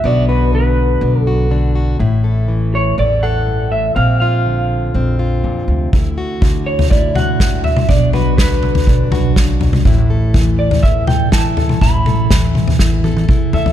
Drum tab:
SD |----------------|----------------|----------------|------------o---|
T1 |----------------|----------------|----------------|----------------|
T2 |----------------|----------------|----------------|----------o----o|
FT |----------------|----------------|----------------|o---o--o--o---o-|
BD |----------------|----------------|----------------|o---o---o---o---|

SD |----o-------o---|------------o---|----o---o-------|
T1 |----------------|----------------|----------oo----|
T2 |--o---o---o----o|----------o----o|--o---o-----o---|
FT |o---o--o--o---o-|o---o--o--o---o-|o---o--o------oo|
BD |o---o---o---o---|o---o---o---o---|o---o---o---o---|